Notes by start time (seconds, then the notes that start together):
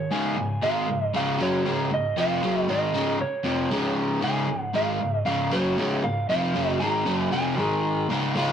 Already playing: C#5
0.11 C#2 G#2 C#3 G#5
0.37 C#2 G#2
0.62 G#2 D#3 G#3 F5
0.88 C#2 G#2
1.14 C#2 G#2 C#3 F5
1.39 F#2 C#3 F#3 C#5
1.65 C#2 G#2 C#3
1.91 C#2 G#2 D#5
2.17 F2 C3 F3 F5
2.42 F#2 C#3 F#3
2.68 G#2 D#3 G#3 D#5
2.93 C#2 G#2 C#3
3.19 C#5, muted overdriven electric guitar stroke
3.44 F2 C3 F3
3.70 C#2 G#2 C#3
4.21 C#2 G#2 C#3 G#5
4.48 C#2 G#2
4.74 G#2 D#3 G#3 F5
5.00 C#2 G#2
5.25 C#2 G#2 C#3 F5
5.52 F#2 C#3 F#3 C#5
5.77 C#2 G#2 C#3
6.04 C#2 G#2 F5
6.29 F2 C3 F3 F5
6.54 F#2 C#3 F#3
6.80 G#2 D#3 G#3 A#5
7.06 F#2 C#3 F#3
7.32 F2 C3 F3 G#5
7.57 G#2 D#3 G#3
8.09 C#2 G#2 C#3
8.35 C#2 G#2 C#3 G#3 F4